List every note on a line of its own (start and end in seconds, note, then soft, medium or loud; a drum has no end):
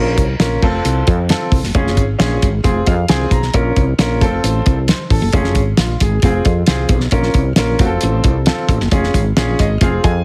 0.00 0.18 A#1 loud
0.00 0.21 C#4 medium
0.00 0.21 F4 medium
0.00 0.21 A#4 medium
0.18 0.35 C2 medium
0.18 kick medium
0.18 closed hi-hat medium
0.40 0.57 A#1 medium
0.40 0.62 C#4 medium
0.40 0.61 F4 medium
0.40 0.63 A#4 medium
0.40 snare loud
0.40 closed hi-hat medium
0.62 0.79 F1 medium
0.62 1.16 C4 medium
0.62 1.16 F4 medium
0.62 1.17 A4 loud
0.62 kick loud
0.62 crash medium
0.85 1.02 C2 medium
0.85 closed hi-hat medium
1.07 1.33 F2 loud
1.07 kick medium
1.07 closed hi-hat medium
1.29 1.55 C4 medium
1.29 1.55 F4 medium
1.29 1.56 A4 medium
1.29 snare loud
1.29 closed hi-hat medium
1.52 1.60 C2 medium
1.52 kick loud
1.52 open hi-hat medium
1.63 1.73 F#1 medium
1.63 snare soft
1.75 1.97 F1 loud
1.75 2.00 C#4 medium
1.75 2.00 F4 medium
1.75 2.01 G#4 medium
1.75 kick loud
1.75 closed hi-hat medium
1.87 snare soft
1.97 2.14 G#1 medium
1.97 kick medium
1.97 closed hi-hat medium
2.19 2.37 A#1 medium
2.19 2.45 C#4 medium
2.19 2.45 F4 medium
2.19 2.45 G#4 medium
2.19 snare loud
2.19 closed hi-hat loud
2.42 2.59 G#1 medium
2.42 kick medium
2.42 closed hi-hat medium
2.64 2.81 F1 medium
2.64 2.90 C4 medium
2.64 2.90 F4 medium
2.64 2.90 G#4 medium
2.64 kick medium
2.64 closed hi-hat medium
2.86 3.04 F2 loud
2.86 3.08 F5 medium
2.86 kick medium
2.86 closed hi-hat medium
3.08 3.26 C2 medium
3.08 3.35 C4 medium
3.08 3.35 F4 medium
3.08 3.35 G#4 medium
3.08 3.30 G#5 medium
3.08 snare loud
3.08 closed hi-hat medium
3.31 3.48 B1 medium
3.31 3.53 A#5 medium
3.31 kick loud
3.31 closed hi-hat medium
3.42 snare soft
3.54 3.71 A#1 loud
3.54 3.80 C#4 medium
3.54 3.80 F4 medium
3.54 3.80 A#4 medium
3.54 kick loud
3.54 closed hi-hat medium
3.76 3.94 C2 medium
3.76 kick medium
3.76 closed hi-hat medium
3.98 4.23 A#1 loud
3.98 4.22 C#4 medium
3.98 4.20 F4 medium
3.98 4.22 A#4 loud
3.98 snare loud
3.98 closed hi-hat loud
4.21 4.38 F1 medium
4.21 4.75 C4 medium
4.21 4.75 F4 medium
4.21 4.75 A4 loud
4.21 kick loud
4.21 closed hi-hat medium
4.44 4.61 A1 loud
4.44 closed hi-hat medium
4.66 4.92 C2 loud
4.66 kick loud
4.66 closed hi-hat medium
4.88 5.10 C5 medium
4.88 snare loud
4.88 closed hi-hat medium
5.10 5.19 A1 medium
5.10 5.54 A4 medium
5.10 kick loud
5.10 open hi-hat soft
5.22 5.30 F#1 medium
5.33 5.56 F1 loud
5.33 5.59 C#4 medium
5.33 5.59 F4 medium
5.33 5.59 G#4 medium
5.33 kick loud
5.33 closed hi-hat medium
5.44 snare soft
5.55 5.73 G#1 medium
5.55 kick medium
5.55 closed hi-hat medium
5.77 5.95 A#1 medium
5.77 6.00 F4 medium
5.77 snare loud
5.77 closed hi-hat loud
6.00 6.18 G#1 medium
6.00 6.23 G#4 medium
6.00 kick medium
6.00 closed hi-hat medium
6.22 6.40 F1 loud
6.22 6.49 C4 medium
6.22 6.49 F4 medium
6.22 6.49 G#4 medium
6.22 kick medium
6.22 closed hi-hat medium
6.45 6.63 F2 loud
6.45 kick medium
6.45 closed hi-hat medium
6.67 6.85 C2 medium
6.67 6.94 C4 medium
6.67 6.94 F4 medium
6.67 6.94 G#4 medium
6.67 snare loud
6.67 closed hi-hat medium
6.89 7.07 B1 medium
6.89 kick loud
6.89 closed hi-hat medium
7.00 snare soft
7.11 7.29 A#1 loud
7.11 7.38 C#4 medium
7.11 7.38 F4 medium
7.11 7.39 A#4 medium
7.11 kick loud
7.11 closed hi-hat medium
7.23 snare soft
7.34 7.52 C2 medium
7.34 kick medium
7.34 closed hi-hat medium
7.56 7.74 A#1 medium
7.56 7.80 C#4 medium
7.56 7.79 F4 medium
7.56 7.80 A#4 medium
7.56 snare loud
7.56 closed hi-hat loud
7.79 7.96 F1 medium
7.79 8.34 C4 medium
7.79 8.34 F4 medium
7.79 7.86 F#4 medium
7.79 kick loud
7.79 closed hi-hat medium
7.86 8.37 A4 medium
8.01 8.20 A1 medium
8.01 closed hi-hat medium
8.24 8.50 C2 medium
8.24 kick medium
8.24 closed hi-hat medium
8.46 8.73 C4 medium
8.46 8.73 F4 medium
8.46 8.73 A4 medium
8.46 snare loud
8.46 closed hi-hat medium
8.69 8.78 A1 medium
8.69 kick loud
8.69 closed hi-hat medium
8.80 8.89 F#1 loud
8.80 snare soft
8.91 9.09 F1 loud
8.91 9.18 C#4 medium
8.91 9.18 F4 medium
8.91 9.18 G#4 medium
8.91 kick loud
8.91 closed hi-hat medium
9.03 snare soft
9.14 9.31 G#1 medium
9.14 kick medium
9.14 closed hi-hat medium
9.37 9.54 A#1 medium
9.37 9.62 C#4 medium
9.37 9.63 F4 medium
9.37 9.63 G#4 medium
9.37 snare loud
9.37 closed hi-hat loud
9.59 9.76 G#1 medium
9.59 9.80 D#5 medium
9.59 kick medium
9.59 closed hi-hat medium
9.81 9.98 F1 loud
9.81 10.07 C4 medium
9.81 10.07 F4 medium
9.81 10.07 G#4 medium
9.81 10.03 F5 medium
9.81 kick medium
9.81 closed hi-hat medium
10.04 10.21 F2 loud
10.04 10.24 G#5 medium
10.04 kick medium
10.04 closed hi-hat medium